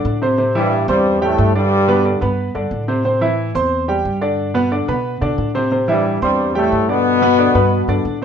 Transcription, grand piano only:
0.00 0.16 D3 medium
0.00 0.16 D4 medium
0.00 0.16 D5 medium
0.22 0.36 C3 medium
0.22 0.36 C4 medium
0.22 0.36 C5 medium
0.38 0.52 C3 medium
0.38 0.52 C4 medium
0.38 0.52 C5 medium
0.55 0.83 E3 medium
0.55 0.83 E4 medium
0.55 0.83 E5 medium
0.89 1.16 C4 medium
0.89 1.16 C5 medium
0.89 1.16 C6 medium
1.22 1.49 G3 medium
1.22 1.49 G4 medium
1.22 1.49 G5 medium
1.55 1.83 D3 medium
1.55 1.83 D4 medium
1.55 1.83 D5 medium
1.88 2.02 B2 medium
1.88 2.02 B3 medium
1.88 2.02 B4 medium
2.05 2.19 D3 medium
2.05 2.19 D4 medium
2.05 2.19 D5 medium
2.21 2.49 B3 medium
2.21 2.49 B4 medium
2.21 2.49 B5 medium
2.55 2.82 D3 medium
2.55 2.82 D4 medium
2.55 2.83 D5 medium
2.88 3.02 C3 medium
2.88 3.02 C4 medium
2.88 3.02 C5 medium
3.05 3.19 C3 medium
3.05 3.19 C4 medium
3.05 3.19 C5 medium
3.21 3.49 E3 medium
3.21 3.49 E4 medium
3.21 3.49 E5 medium
3.55 3.82 C4 medium
3.55 3.83 C5 medium
3.55 3.83 C6 medium
3.88 4.16 G3 medium
3.88 4.16 G4 medium
3.88 4.16 G5 medium
4.21 4.49 D3 medium
4.21 4.49 D4 medium
4.21 4.49 D5 medium
4.54 4.68 B2 medium
4.54 4.69 B3 medium
4.54 4.69 B4 medium
4.72 4.85 D3 medium
4.72 4.85 D4 medium
4.72 4.86 D5 medium
4.88 5.16 B3 medium
4.88 5.16 B4 medium
4.88 5.16 B5 medium
5.21 5.49 D3 medium
5.21 5.49 D4 medium
5.21 5.49 D5 medium
5.55 5.69 C3 medium
5.55 5.69 C4 medium
5.55 5.69 C5 medium
5.71 5.85 C3 medium
5.71 5.85 C4 medium
5.71 5.86 C5 medium
5.88 6.15 E3 medium
5.88 6.15 E4 medium
5.88 6.16 E5 medium
6.22 6.49 C4 medium
6.22 6.49 C5 medium
6.22 6.49 C6 medium
6.55 6.82 G3 medium
6.55 6.82 G4 medium
6.55 6.83 G5 medium
6.88 7.16 D3 medium
6.88 7.16 D4 medium
6.88 7.16 D5 medium
7.22 7.35 B2 medium
7.22 7.36 B3 medium
7.22 7.36 B4 medium
7.39 7.52 D3 medium
7.39 7.52 D4 medium
7.39 7.52 D5 medium
7.55 7.82 B3 medium
7.55 7.82 B4 medium
7.55 7.82 B5 medium
7.88 8.15 D3 medium
7.88 8.16 D4 medium
7.88 8.16 D5 medium

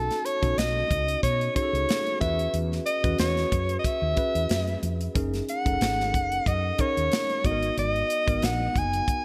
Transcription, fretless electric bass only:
0.42 0.54 B1 medium
0.57 0.82 B1 medium
0.91 1.15 C#2 medium
1.23 1.48 B2 medium
1.73 1.85 C#2 medium
2.21 2.46 E2 medium
2.54 2.78 E2 medium
3.04 3.15 E2 medium
3.19 3.44 E2 medium
3.52 3.77 F#2 medium
4.02 4.13 D#2 medium
4.35 4.46 E2 medium
4.50 4.75 F#2 medium
4.83 5.07 F2 medium
5.15 5.40 F#1 medium
5.66 5.77 F#1 medium
5.81 6.14 G#1 medium
6.14 6.38 F#1 medium
6.46 6.71 F#2 medium
6.97 7.08 D#2 medium
7.45 7.69 G#1 medium
7.77 8.02 G#1 loud
8.28 8.39 G#1 medium
8.43 8.67 A#1 loud
8.76 9.00 F#1 medium

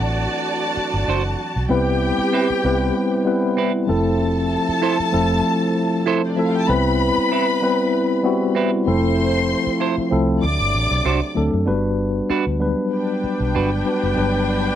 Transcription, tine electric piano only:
0.00 1.66 E3 soft
0.00 1.66 F#3 soft
0.00 1.67 C4 soft
0.00 1.03 F#5 medium
1.69 2.28 G3 medium
1.69 2.29 B3 medium
1.69 2.29 C4 medium
1.69 2.29 E4 medium
1.69 2.30 B4 loud
2.63 3.03 G3 medium
2.63 3.04 B3 medium
2.63 3.04 C4 medium
2.63 3.04 E4 medium
2.63 3.04 B4 medium
3.25 3.65 G3 medium
3.25 3.66 B3 medium
3.25 3.66 C4 medium
3.25 3.66 E4 medium
3.25 3.66 B4 medium
3.87 4.88 F3 medium
3.87 4.88 A3 medium
3.87 4.89 C4 medium
3.87 4.89 E4 medium
3.87 4.89 A4 loud
5.12 5.92 F3 medium
5.12 5.92 A3 medium
5.12 5.93 C4 medium
5.12 5.93 E4 medium
5.12 5.93 A4 loud
6.37 6.58 F3 medium
6.37 6.58 A3 medium
6.37 6.58 C4 medium
6.37 6.59 E4 medium
6.37 6.59 A4 medium
6.68 7.27 G3 medium
6.68 7.27 B3 medium
6.68 7.28 C4 medium
6.68 7.28 E4 medium
6.68 7.28 B4 loud
7.62 8.02 G3 medium
7.62 8.02 B3 medium
7.62 8.02 C4 medium
7.62 8.03 E4 medium
7.62 8.03 B4 loud
8.23 8.64 G3 medium
8.23 8.64 B3 medium
8.23 8.64 C4 medium
8.23 8.65 E4 medium
8.23 8.65 F#4 loud
8.86 9.87 F3 medium
8.86 9.87 A3 medium
8.86 9.87 C4 medium
8.86 9.88 E4 medium
8.86 9.88 A4 medium
10.10 10.42 F3 medium
10.10 10.43 A3 medium
10.10 10.43 C4 medium
10.10 10.43 E4 medium
10.10 10.43 A4 medium
11.35 11.56 F#3 medium
11.35 11.57 A3 medium
11.35 11.57 C4 medium
11.35 11.57 D4 medium
11.35 11.57 A4 medium
11.65 12.26 G3 medium
11.65 12.26 B3 medium
11.65 12.26 D4 medium
11.65 12.26 F#4 medium
11.65 12.27 B4 loud
12.59 13.41 F#3 medium
12.59 13.40 G3 medium
12.59 13.40 B3 medium
12.59 13.40 D4 medium
12.59 13.41 B4 medium
13.85 14.06 G3 medium
13.85 14.06 B3 medium
13.85 14.06 D4 medium
13.85 14.07 F#4 medium
13.85 14.07 B4 medium
14.16 14.75 F#3 medium
14.16 14.75 G3 medium
14.16 14.75 B3 medium
14.16 14.75 D4 medium
14.16 14.75 B4 loud

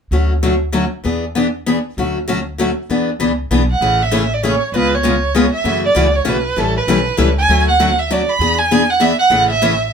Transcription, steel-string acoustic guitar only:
0.12 0.32 D3 soft
0.12 0.32 F#3 soft
0.12 0.32 A3 medium
0.12 0.32 C#4 medium
0.12 0.32 F#4 medium
0.43 0.54 D3 medium
0.43 0.54 F#3 medium
0.43 0.54 A3 medium
0.43 0.54 C#4 medium
0.43 0.54 F#4 medium
0.72 0.84 D3 medium
0.72 0.84 F#3 medium
0.72 0.84 A3 medium
0.72 0.85 C#4 medium
0.72 0.84 F#4 medium
1.04 1.24 E3 soft
1.04 1.24 B3 soft
1.04 1.24 D4 medium
1.04 1.25 G#4 medium
1.35 1.46 E3 medium
1.35 1.46 B3 medium
1.35 1.47 D4 medium
1.35 1.46 G#4 medium
1.66 1.77 E3 medium
1.66 1.77 B3 medium
1.66 1.77 D4 medium
1.66 1.78 G#4 medium
1.98 2.17 D3 medium
1.98 2.17 F#3 medium
1.98 2.17 A3 medium
1.98 2.17 C#4 medium
1.98 2.18 F#4 medium
2.28 2.39 D3 medium
2.28 2.38 F#3 medium
2.28 2.39 A3 medium
2.28 2.39 C#4 medium
2.28 2.39 F#4 medium
2.58 2.69 D3 medium
2.58 2.69 F#3 medium
2.58 2.70 A3 medium
2.58 2.70 C#4 medium
2.58 2.70 F#4 medium
2.90 3.09 E3 medium
2.90 3.09 B3 medium
2.90 3.09 D4 medium
2.90 3.09 G#4 soft
3.20 3.30 E3 medium
3.20 3.31 B3 medium
3.20 3.31 D4 medium
3.20 3.31 G#4 medium
3.51 3.61 E3 medium
3.51 3.61 B3 medium
3.51 3.62 D4 medium
3.51 3.62 G#4 medium
3.81 4.00 C#3 medium
3.81 4.01 E3 soft
3.81 4.01 A3 medium
3.81 4.01 C#4 medium
3.81 4.01 G#4 medium
4.11 4.22 C#3 medium
4.11 4.22 E3 medium
4.11 4.22 A3 medium
4.11 4.23 C#4 medium
4.11 4.23 G#4 medium
4.43 4.53 C#3 medium
4.43 4.53 E3 medium
4.43 4.54 A3 medium
4.43 4.54 C#4 medium
4.43 4.54 G#4 medium
4.74 4.93 C#3 medium
4.74 4.93 G#3 medium
4.74 4.93 B3 soft
4.74 4.94 F4 medium
4.74 4.93 G#4 medium
5.03 5.14 C#3 medium
5.03 5.14 G#3 medium
5.03 5.15 B3 medium
5.03 5.15 F4 medium
5.03 5.15 G#4 medium
5.35 5.45 C#3 medium
5.35 5.45 G#3 medium
5.35 5.45 B3 medium
5.35 5.45 F4 medium
5.35 5.46 G#4 medium
5.64 5.84 C#3 medium
5.64 5.84 E3 medium
5.64 5.84 A3 medium
5.64 5.85 C#4 medium
5.64 5.84 F#4 medium
5.95 6.06 C#3 medium
5.95 6.06 E3 medium
5.95 6.06 A3 medium
5.95 6.06 C#4 medium
5.95 6.06 F#4 medium
6.25 6.36 C#3 medium
6.25 6.36 E3 medium
6.25 6.36 A3 medium
6.25 6.36 C#4 medium
6.25 6.36 F#4 medium
6.56 6.76 E3 medium
6.56 6.76 G3 medium
6.56 6.77 C#4 medium
6.56 6.76 E4 medium
6.56 6.77 A4 medium
6.88 6.98 E3 medium
6.88 6.98 G3 medium
6.88 6.99 C#4 medium
6.88 6.98 E4 medium
6.88 6.99 A4 medium
7.17 7.28 E3 medium
7.17 7.28 G3 medium
7.17 7.29 C#4 medium
7.17 7.28 E4 medium
7.17 7.29 A4 medium
7.49 7.68 D3 medium
7.49 7.68 F#3 medium
7.49 7.69 A3 medium
7.49 7.69 C#4 medium
7.49 7.69 F#4 medium
7.80 7.90 D3 medium
7.80 7.90 F#3 medium
7.80 7.90 A3 medium
7.80 7.90 C#4 medium
7.80 7.91 F#4 medium
8.11 8.21 D3 medium
8.11 8.21 F#3 medium
8.11 8.21 A3 medium
8.11 8.21 C#4 medium
8.11 8.21 F#4 medium
8.41 8.60 E3 medium
8.41 8.60 B3 medium
8.41 8.60 D4 medium
8.41 8.60 G#4 medium
8.71 8.81 E3 medium
8.71 8.82 B3 medium
8.71 8.82 D4 medium
8.71 8.82 G#4 loud
9.00 9.11 E3 medium
9.00 9.11 B3 medium
9.00 9.11 D4 medium
9.00 9.12 G#4 medium
9.30 9.50 C#3 medium
9.30 9.50 E3 soft
9.30 9.51 A3 medium
9.30 9.51 C#4 medium
9.30 9.51 G#4 medium
9.62 9.73 C#3 medium
9.62 9.73 E3 medium
9.62 9.73 A3 medium
9.62 9.73 C#4 medium
9.62 9.73 G#4 loud

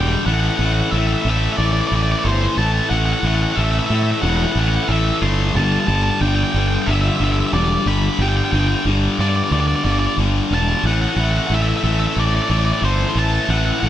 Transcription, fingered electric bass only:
0.00 0.15 E1 medium
0.26 0.48 A1 loud
0.59 0.81 A1 medium
0.92 1.14 A1 loud
1.25 1.47 A1 medium
1.58 1.80 A1 medium
1.92 2.13 A1 medium
2.25 2.46 G1 loud
2.57 2.79 A1 medium
2.91 3.12 A1 loud
3.23 3.45 A1 medium
3.57 3.79 A1 loud
3.90 4.12 A2 medium
4.23 4.45 E1 loud
4.55 4.77 A1 loud
4.89 5.10 A1 loud
5.22 5.54 G1 loud
5.55 5.77 G1 loud
5.88 6.10 G1 loud
6.21 6.43 G1 loud
6.54 6.76 G1 medium
6.87 7.09 G1 loud
7.20 7.42 G1 medium
7.53 7.75 E1 loud
7.86 8.08 G1 medium
8.19 8.41 G1 loud
8.52 8.74 G1 medium
8.85 9.07 G1 loud
9.19 9.40 G2 medium
9.51 9.73 D2 medium
9.85 10.06 G1 medium
10.18 10.39 G1 medium
10.51 10.72 E1 medium
10.84 11.05 A1 loud
11.16 11.38 A1 medium
11.50 11.72 A1 medium
11.84 12.05 A1 medium
12.16 12.38 A1 loud
12.50 12.71 A1 medium
12.82 13.04 G1 medium
13.15 13.37 A1 medium
13.48 13.70 A1 loud
13.83 13.89 A1 medium

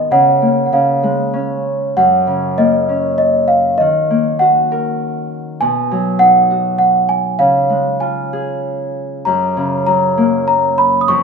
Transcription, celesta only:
0.12 0.65 F#5 medium
0.66 0.73 F#5 soft
0.73 1.62 F5 medium
1.97 2.60 F#5 medium
2.58 3.17 D#5 medium
3.18 3.50 D#5 medium
3.48 3.80 F5 medium
3.78 4.41 D#5 medium
4.39 5.26 F#5 medium
5.61 6.22 G#5 loud
6.19 6.77 F#5 medium
6.79 7.10 F#5 medium
7.09 7.41 G#5 medium
7.39 7.97 F5 medium
8.00 8.90 G#5 medium
9.25 9.85 A#5 medium
9.87 10.46 A#5 medium
10.48 10.79 A#5 medium
10.78 11.02 B5 medium
11.01 11.08 D#6 medium
11.08 11.23 C#6 medium

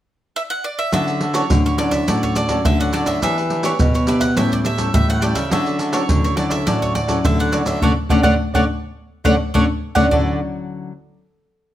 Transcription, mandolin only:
0.36 0.41 E5 medium
0.50 0.65 F#5 medium
0.64 0.78 D5 medium
0.79 0.92 E5 medium
0.94 1.33 E5 medium
1.35 1.62 C#5 medium
1.66 1.78 C#5 medium
1.79 1.93 D5 medium
1.91 2.07 E5 medium
2.08 2.21 D5 medium
2.23 2.36 C#5 medium
2.36 2.66 D5 medium
2.65 2.80 E5 medium
2.81 2.95 F#5 medium
2.93 3.07 D5 medium
3.07 3.22 E5 medium
3.23 3.67 E5 medium
3.65 3.92 C#5 medium
3.95 4.08 C#5 medium
4.08 4.23 D5 medium
4.21 4.35 F#5 medium
4.37 4.51 E5 medium
4.53 4.58 D5 medium
4.66 4.93 E5 medium
4.94 5.09 E5 medium
5.10 5.23 F#5 medium
5.22 5.36 D5 medium
5.35 5.50 E5 medium
5.53 5.93 E5 medium
5.94 6.23 C#5 medium
6.25 6.37 C#5 medium
6.37 6.51 D5 medium
6.51 6.65 E5 medium
6.67 6.80 D5 medium
6.82 6.95 C#5 medium
6.95 7.25 D5 medium
7.25 7.38 E5 medium
7.40 7.54 F#5 medium
7.53 7.58 D5 medium
7.67 7.82 E5 medium
7.82 7.92 C#5 medium
7.82 7.92 D5 medium
7.82 7.92 F#5 medium
8.10 8.20 C#5 medium
8.10 8.20 D5 medium
8.10 8.20 F#5 medium
8.23 8.33 C#5 medium
8.23 8.34 D5 medium
8.23 8.34 F#5 medium
8.55 8.64 C#5 medium
8.55 8.64 D5 medium
8.55 8.64 F#5 medium
9.25 9.35 C#5 medium
9.25 9.34 D5 medium
9.25 9.35 F#5 medium
9.54 9.64 C#5 medium
9.54 9.64 D5 medium
9.54 9.64 F#5 medium
9.95 10.05 C#5 medium
9.95 10.05 D5 medium
9.95 10.05 F#5 medium
10.11 10.38 D5 medium

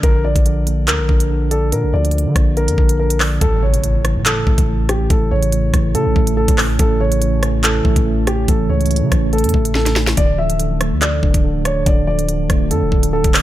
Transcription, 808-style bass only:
0.03 0.34 A#1 loud
0.36 0.89 A#1 loud
0.88 1.01 D2 loud
0.99 1.08 A#1 loud
1.09 1.74 A#1 loud
1.73 1.85 A#2 loud
1.84 1.93 A#1 loud
1.94 2.27 D2 loud
2.26 2.35 D3 loud
2.36 2.70 A#1 loud
2.68 2.78 F2 loud
2.78 3.39 A#1 loud
3.41 4.17 A1 loud
4.16 4.45 A2 loud
4.47 4.57 A1 loud
4.58 5.08 A1 loud
5.10 5.31 A1 loud
5.31 5.72 A1 loud
5.74 5.96 A1 loud
5.95 6.07 C#3 loud
6.06 6.15 A1 loud
6.16 6.47 A1 loud
6.48 6.78 A1 loud
6.79 7.81 A1 loud
7.85 7.96 A1 loud
7.96 8.46 A1 loud
8.48 8.69 A1 loud
8.70 9.03 C#2 loud
9.02 9.11 C#3 loud
9.12 9.46 A1 loud
9.44 9.54 E2 loud
9.54 10.15 A1 loud
10.17 10.93 D1 loud
10.92 11.21 D2 loud
11.23 11.34 D1 loud
11.34 11.84 D1 loud
11.86 12.07 D1 loud
12.08 12.48 D1 loud
12.50 12.72 D1 loud
12.71 12.84 F2 loud
12.82 12.91 D1 loud
12.92 13.23 D1 loud
13.24 13.42 D1 loud

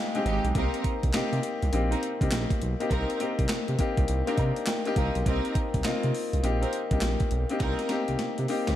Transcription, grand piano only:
0.00 0.15 G#3 medium
0.00 0.15 C4 medium
0.00 0.16 D#4 medium
0.00 0.16 G4 loud
0.00 0.57 A#4 loud
0.00 0.24 F5 medium
0.00 0.57 G5 medium
0.00 0.57 G#5 medium
0.00 0.57 A#5 medium
0.15 0.53 G#3 medium
0.15 0.53 C4 medium
0.15 0.53 D#4 medium
0.15 0.53 G4 loud
0.26 0.53 D#5 medium
0.55 1.11 A#3 medium
0.55 1.11 C4 medium
0.55 1.11 D#4 medium
0.55 1.11 G4 medium
1.14 1.69 A#3 loud
1.14 1.69 C4 medium
1.14 1.70 D#4 medium
1.14 1.70 G4 loud
1.72 2.16 A#3 medium
1.72 2.17 C4 medium
1.72 2.17 D#4 medium
1.72 2.17 G4 medium
2.21 2.74 A#3 medium
2.21 2.74 C4 medium
2.21 2.74 D#4 medium
2.21 2.75 G4 medium
2.80 3.17 A#3 medium
2.80 3.18 C4 medium
2.80 3.18 D#4 medium
2.80 3.18 G4 medium
3.20 3.75 A#3 medium
3.20 3.76 C4 medium
3.20 3.76 D#4 medium
3.20 3.76 G4 medium
3.79 4.23 A#3 medium
3.79 4.23 C4 medium
3.79 4.23 D#4 medium
3.79 4.23 G4 loud
4.27 4.80 A#3 loud
4.27 4.80 C4 medium
4.27 4.32 D4 medium
4.27 4.81 G4 loud
4.35 4.84 D#4 medium
4.39 4.66 A#5 medium
4.68 4.95 G5 medium
4.86 5.23 A#3 medium
4.86 5.24 C4 medium
4.86 5.24 D#4 medium
4.86 5.24 G4 loud
4.97 5.24 F5 medium
5.26 5.81 A#3 medium
5.26 5.82 C4 medium
5.26 5.82 D#4 medium
5.26 5.82 G4 medium
5.84 6.40 A#3 loud
5.84 6.40 C4 medium
5.84 6.40 D#4 medium
5.84 6.41 F4 loud
6.43 6.87 A#3 medium
6.43 6.87 C4 medium
6.43 6.87 D#4 medium
6.43 6.88 G4 medium
6.92 7.45 A#3 medium
6.92 7.45 C4 medium
6.92 7.45 D#4 medium
6.92 7.45 G4 medium
7.50 7.88 A#3 medium
7.50 7.88 C4 medium
7.50 7.88 D#4 medium
7.50 7.88 G4 medium
7.90 8.46 A#3 medium
7.90 8.46 C4 medium
7.90 8.46 D#4 medium
7.90 8.46 G4 loud
8.49 8.76 A#3 medium
8.49 8.76 C4 medium
8.49 8.76 D#4 medium
8.49 8.76 G4 loud

